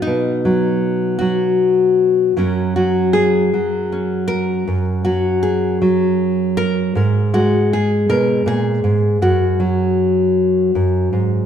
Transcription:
Already playing: F#3 F#4
0.02 D#4
0.07 B2
0.45 F#3
1.19 F#3 F#4
2.37 F#2 F#3 C#4 F#4 A#4
2.76 F#3 F#4
3.13 G#4
3.54 F#3
3.92 C#4
4.28 A#4
4.68 F#2
5.05 F#3 F#4
5.43 G#4
5.82 F#3
6.57 A#4
6.95 G#2 A#4
7.34 G#3 F#4
7.73 G#4
8.09 B2 A#4
8.46 A#2 G#4
8.84 G#2
9.22 F#2 F#4
9.60 F#3
10.75 F#2
11.13 G#2

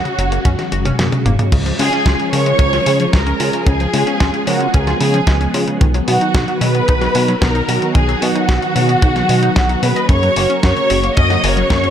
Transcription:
Already playing: C#3 F#3 G#3 F#4
0.05 C#3, closed hi-hat
0.18 F#1 F#3, closed hi-hat
0.32 A#3, closed hi-hat
0.45 F#2 C#4, kick, closed hi-hat, high tom
0.59 F#4, snare, closed hi-hat, high tom
0.72 F#1 F#4, closed hi-hat
0.85 C#4, closed hi-hat, mid tom
0.99 F#2 A#3, snare, closed hi-hat, mid tom
1.12 C#3, closed hi-hat, mid tom
1.26 F#1 A#3, closed hi-hat, mid tom
1.39 C#3, closed hi-hat, mid tom
1.52 C#2 C#3 F3 G#3 C#4 G#4, kick, closed hi-hat, crash
1.66 F3, closed hi-hat
1.79 C#3 G#3 C#4 F4 G#4 G#5, open hi-hat
1.93 C#4, closed hi-hat
2.06 C#2 F4, kick, snare, closed hi-hat
2.20 C#3, closed hi-hat
2.33 C#3 F3 G#3 C#4 F4 A#4 C#5 C#6, open hi-hat
2.46 G#3, closed hi-hat
2.59 C#2 C#4, kick, closed hi-hat
2.73 F4, snare, closed hi-hat
2.86 C#3 G#3 C#4 F4 G#4, open hi-hat
3.00 F3, closed hi-hat
3.13 C#2 G#3 A#4 A#5, kick, snare, closed hi-hat
3.27 C#4, closed hi-hat
3.40 C#3 G#3 C#4 F4 G#4, open hi-hat
3.53 C#3, closed hi-hat
3.67 C#2 C#3 B3 G#4 G#5, kick, closed hi-hat
3.80 F3, closed hi-hat
3.93 C#3 G#3 C#4 F4 G#4, open hi-hat
4.07 C#4, closed hi-hat
4.20 C#2 F4, kick, snare, closed hi-hat
4.34 C#3, closed hi-hat
4.47 C#3 F3 G#3 C#4 F4 F#4 A#4 F#5, open hi-hat
4.61 G#3, closed hi-hat
4.74 C#2 C#4 G#4 G#5, kick, closed hi-hat
4.87 F4, snare, closed hi-hat
5.00 C#3 G#3 C#4 F4 G#4 G#5, open hi-hat
5.14 F3, closed hi-hat
5.27 C#2 G#3, kick, snare, closed hi-hat
5.41 C#4, closed hi-hat
5.54 C#3 G#3 C#4 F4 G#4, open hi-hat
5.68 C#3, closed hi-hat
5.81 B1 D#3 F#3 F#4, kick, closed hi-hat
5.94 F#3, closed hi-hat
6.08 B2 F#3 B3 D#4 F#4 F#5, open hi-hat
6.21 D#4, closed hi-hat
6.35 B1 F#4, kick, snare, closed hi-hat
6.48 D#3, closed hi-hat
6.61 B2 F#3 B3 D#4 G#4 B4 B5, open hi-hat
6.75 B3, closed hi-hat
6.88 B1 D#4, kick, closed hi-hat
7.01 F#4, snare, closed hi-hat
7.15 B2 D#3 F#3 B3 D#4 F#4, open hi-hat
7.28 F#3, closed hi-hat
7.42 B1 B3 A#4 A#5, kick, snare, closed hi-hat
7.55 D#4, closed hi-hat
7.68 B2 F#3 B3 D#4 F#4, open hi-hat
7.82 D#3, closed hi-hat
7.95 B1 D#3 G#4 G#5, kick, closed hi-hat
8.09 F#3, closed hi-hat
8.22 B2 F#3 B3 D#4 F#4 F#5, open hi-hat
8.35 D#4, closed hi-hat
8.49 B1 F#4, kick, snare, closed hi-hat
8.62 D#3, closed hi-hat
8.75 B2 F#3 B3 D#4 G#4, open hi-hat
8.89 B3, closed hi-hat
9.02 B1 D#4, kick, closed hi-hat
9.16 F#4, snare, closed hi-hat
9.29 B2 F#3 B3 D#4 F#4, open hi-hat
9.42 D#4, closed hi-hat
9.56 B1 F#4, kick, snare, closed hi-hat
9.69 D#4, closed hi-hat
9.83 B2 A#3 B3 C#4 F#4 G#4 B4 B5, open hi-hat
9.96 D#5, closed hi-hat
10.09 F#2 C#3 A#3 F#4 C#5 C#6, kick, closed hi-hat
10.23 F#3, closed hi-hat
10.36 F#1 A#3 C#4 F#4 A#4, open hi-hat
10.50 C#4, closed hi-hat
10.63 F#2 F#4 C#5 C#6, kick, snare, closed hi-hat
10.77 C#3, closed hi-hat
10.90 F#1 F#3 A#3 C#4 F#4 C#5, open hi-hat
11.03 A#3, closed hi-hat
11.17 F#2 C#4 D#5 D#6, kick, closed hi-hat
11.30 F#4, snare, closed hi-hat
11.43 F#1 C#3 A#3 C#4 F#4 A#4 C#5 C#6, open hi-hat
11.57 F#3, closed hi-hat
11.70 F#2 A#3, kick, snare, closed hi-hat
11.84 C#4, closed hi-hat

